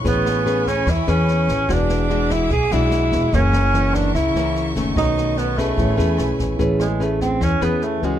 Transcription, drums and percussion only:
0.05 kick medium
0.05 snare soft
0.26 cross-stick medium
0.26 snare soft
0.46 snare soft
0.66 kick soft
0.66 snare soft
0.87 kick medium
0.87 cross-stick medium
0.87 snare soft
1.08 snare soft
1.28 snare soft
1.48 kick soft
1.48 snare soft
1.69 kick medium
1.69 cross-stick medium
1.69 snare soft
1.89 snare soft
2.10 snare soft
2.30 kick soft
2.30 cross-stick medium
2.30 snare soft
2.50 kick medium
2.50 snare soft
2.71 snare soft
2.91 cross-stick medium
2.91 snare soft
3.12 kick soft
3.12 snare soft
3.33 kick medium
3.33 snare soft
3.53 cross-stick medium
3.53 snare soft
3.74 snare soft
3.94 kick soft
3.94 snare soft
4.15 kick medium
4.15 cross-stick medium
4.15 snare soft
4.35 snare soft
4.56 snare soft
4.76 kick soft
4.76 snare soft
4.96 kick medium
4.96 cross-stick medium
4.96 snare soft
5.18 snare soft
5.37 snare soft
5.58 kick soft
5.58 cross-stick medium
5.58 snare soft
5.78 kick medium
5.78 snare soft
5.99 snare soft
6.18 cross-stick medium
6.18 snare soft
6.39 kick soft
6.39 snare soft
6.59 kick medium
6.59 snare soft
6.79 cross-stick medium
6.79 snare soft
7.01 snare soft
7.21 kick soft
7.21 snare soft
7.41 kick medium
7.41 cross-stick medium
7.41 snare soft
7.61 snare soft
7.82 snare soft
8.03 kick soft
8.03 snare soft

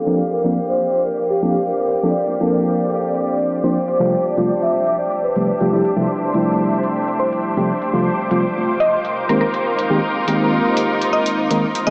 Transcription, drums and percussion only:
0.44 closed hi-hat medium
0.93 closed hi-hat medium
1.18 closed hi-hat soft
1.42 closed hi-hat medium
1.67 closed hi-hat soft
1.92 closed hi-hat medium
2.41 closed hi-hat medium
2.90 closed hi-hat medium
3.14 closed hi-hat soft
3.39 closed hi-hat medium
3.64 closed hi-hat soft
3.88 closed hi-hat medium
4.37 closed hi-hat medium
4.62 closed hi-hat soft
4.87 closed hi-hat medium
5.11 closed hi-hat soft
5.36 closed hi-hat medium
5.60 closed hi-hat soft
5.85 closed hi-hat medium
6.34 closed hi-hat medium
6.83 closed hi-hat medium
7.08 closed hi-hat soft
7.33 closed hi-hat medium
7.57 closed hi-hat soft
7.82 closed hi-hat medium
8.31 closed hi-hat medium
8.80 closed hi-hat medium
9.05 closed hi-hat soft
9.29 closed hi-hat medium
9.54 closed hi-hat soft
9.79 closed hi-hat medium
10.28 closed hi-hat medium
10.77 closed hi-hat medium
11.02 closed hi-hat medium
11.26 closed hi-hat medium
11.51 closed hi-hat medium
11.75 closed hi-hat medium

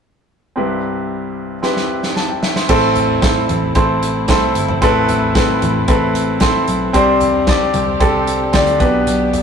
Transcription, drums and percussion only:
1.63 snare soft
1.76 snare soft
2.03 snare soft
2.16 snare medium
2.43 snare medium
2.56 snare medium
2.69 kick loud
2.69 crash medium
2.95 closed hi-hat medium
2.95 floor tom medium
3.22 kick loud
3.22 snare loud
3.22 closed hi-hat medium
3.49 closed hi-hat medium
3.49 floor tom medium
3.75 kick loud
3.75 closed hi-hat medium
4.03 closed hi-hat medium
4.28 kick loud
4.28 snare loud
4.28 closed hi-hat medium
4.55 closed hi-hat medium
4.68 floor tom medium
4.82 kick medium
4.82 closed hi-hat medium
5.08 closed hi-hat medium
5.08 floor tom medium
5.35 kick loud
5.35 snare loud
5.35 closed hi-hat medium
5.62 closed hi-hat medium
5.62 floor tom medium
5.88 kick loud
5.88 closed hi-hat medium
6.15 closed hi-hat medium
6.40 kick medium
6.40 snare loud
6.40 closed hi-hat medium
6.68 closed hi-hat medium
6.94 kick loud
6.94 closed hi-hat medium
7.20 closed hi-hat medium
7.20 floor tom medium
7.47 kick loud
7.47 snare loud
7.47 closed hi-hat medium
7.74 closed hi-hat medium
7.74 floor tom medium
8.00 kick loud
8.00 closed hi-hat medium
8.27 closed hi-hat medium
8.53 kick medium
8.53 snare loud
8.53 closed hi-hat medium
8.67 closed hi-hat medium
8.80 kick medium
8.80 closed hi-hat medium
9.07 closed hi-hat medium
9.33 closed hi-hat medium
9.33 floor tom medium

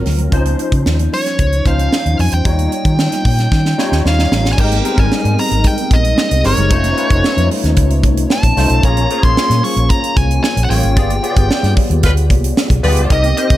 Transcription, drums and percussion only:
0.06 snare soft
0.06 open hi-hat medium
0.06 low conga medium
0.18 closed hi-hat soft
0.32 kick loud
0.32 closed hi-hat medium
0.45 closed hi-hat medium
0.45 muted conga soft
0.45 high conga medium
0.59 closed hi-hat medium
0.72 kick medium
0.72 closed hi-hat medium
0.86 snare loud
0.99 closed hi-hat medium
0.99 high conga medium
1.12 open hi-hat medium
1.12 low conga medium
1.26 snare soft
1.26 closed hi-hat soft
1.39 kick medium
1.39 closed hi-hat medium
1.39 muted conga soft
1.52 closed hi-hat soft
1.65 kick medium
1.65 closed hi-hat medium
1.65 high conga medium
1.79 closed hi-hat medium
1.92 snare loud
1.92 muted conga soft
2.06 closed hi-hat medium
2.19 open hi-hat medium
2.19 low conga medium
2.31 closed hi-hat medium
2.45 kick loud
2.45 closed hi-hat medium
2.45 muted conga soft
2.59 closed hi-hat medium
2.59 high conga medium
2.72 closed hi-hat medium
2.85 kick medium
2.85 closed hi-hat medium
2.99 snare loud
3.12 snare soft
3.12 closed hi-hat medium
3.12 high conga medium
3.12 low conga medium
3.25 kick medium
3.25 open hi-hat medium
3.25 low conga medium
3.38 snare soft
3.38 closed hi-hat soft
3.52 kick medium
3.52 snare medium
3.65 snare medium
3.79 snare medium
3.79 high conga medium
3.92 snare medium
4.05 snare medium
4.05 muted conga soft
4.19 snare medium
4.19 muted conga soft
4.32 snare loud
4.32 low conga medium
4.45 snare medium
4.58 kick loud
4.58 crash loud
4.71 closed hi-hat medium
4.71 muted conga soft
4.71 high conga medium
4.85 closed hi-hat medium
4.98 kick loud
4.98 closed hi-hat medium
5.12 snare loud
5.12 muted conga soft
5.24 closed hi-hat medium
5.24 muted conga soft
5.24 high conga medium
5.24 low conga medium
5.37 open hi-hat medium
5.37 low conga medium
5.51 closed hi-hat soft
5.64 kick medium
5.64 closed hi-hat medium
5.78 closed hi-hat medium
5.78 muted conga soft
5.91 kick medium
5.91 closed hi-hat medium
5.91 high conga medium
6.05 closed hi-hat medium
6.17 snare loud
6.17 muted conga soft
6.17 high conga medium
6.31 closed hi-hat medium
6.31 muted conga soft
6.44 snare soft
6.44 open hi-hat medium
6.44 low conga medium
6.57 closed hi-hat soft
6.70 kick loud
6.70 closed hi-hat medium
6.84 closed hi-hat medium
6.84 muted conga soft
6.84 high conga medium
6.97 closed hi-hat medium
7.10 kick loud
7.10 closed hi-hat medium
7.24 snare loud
7.37 closed hi-hat medium
7.37 muted conga soft
7.37 high conga medium
7.37 low conga medium
7.50 open hi-hat medium
7.50 low conga medium
7.64 snare soft
7.64 closed hi-hat soft
7.76 kick medium
7.76 closed hi-hat medium
7.76 muted conga soft
7.90 closed hi-hat soft
7.90 muted conga soft
8.04 kick medium
8.04 closed hi-hat medium
8.04 high conga medium
8.17 closed hi-hat medium
8.30 snare loud
8.30 muted conga soft
8.30 high conga medium
8.43 kick medium
8.43 closed hi-hat medium
8.43 muted conga soft
8.57 snare soft
8.57 open hi-hat medium
8.57 low conga medium
8.69 closed hi-hat medium
8.83 kick loud
8.83 closed hi-hat medium
8.97 closed hi-hat medium
8.97 muted conga soft
8.97 high conga medium
9.10 closed hi-hat medium
9.23 kick loud
9.23 closed hi-hat medium
9.37 snare loud
9.50 snare soft
9.50 closed hi-hat medium
9.50 high conga medium
9.50 low conga medium
9.63 open hi-hat medium
9.63 low conga medium
9.77 closed hi-hat soft
9.90 kick medium
9.90 closed hi-hat medium
9.90 muted conga soft
10.04 closed hi-hat medium
10.16 kick loud
10.16 closed hi-hat medium
10.16 high conga medium
10.31 closed hi-hat medium
10.43 snare loud
10.43 muted conga soft
10.43 high conga medium
10.56 closed hi-hat medium
10.56 muted conga soft
10.69 snare soft
10.69 open hi-hat medium
10.69 low conga medium
10.83 closed hi-hat medium
10.97 kick loud
10.97 closed hi-hat medium
11.10 closed hi-hat medium
11.10 high conga medium
11.23 closed hi-hat medium
11.37 kick loud
11.37 closed hi-hat medium
11.51 snare loud
11.51 muted conga soft
11.63 snare soft
11.63 closed hi-hat medium
11.63 muted conga soft
11.63 high conga medium
11.76 kick medium
11.76 open hi-hat medium
11.76 low conga medium
11.91 closed hi-hat soft
12.03 kick medium
12.03 closed hi-hat medium
12.17 closed hi-hat soft
12.30 kick medium
12.30 closed hi-hat medium
12.30 high conga medium
12.44 closed hi-hat medium
12.56 snare loud
12.56 high conga medium
12.70 kick medium
12.70 closed hi-hat medium
12.84 open hi-hat medium
12.84 low conga medium
12.96 closed hi-hat medium
13.10 kick loud
13.10 closed hi-hat medium
13.23 closed hi-hat medium
13.23 muted conga soft
13.23 high conga medium
13.37 closed hi-hat medium
13.50 kick loud
13.50 closed hi-hat medium

